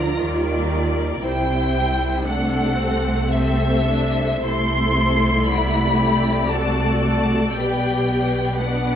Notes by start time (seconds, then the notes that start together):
Already playing: D2 D3 F3 F4 A#4 D5 A#5
0.21 D#2 D#3 G3 A#4 D5
1.22 C2 C3 G3 E4 C5 G5
2.25 A3 D4 A4 C5 F#5
2.77 C4
3.30 C4 A4 E5
3.87 D4
4.43 C2 C3 A3 E4 A4 C6
5.49 F#4 D5 B5
5.98 G4
6.50 F#4 A4 A5
7.01 A5
7.53 B1 B2 G3 G4 B4 G5
8.08 B4
8.60 B3 D4 D5 F#5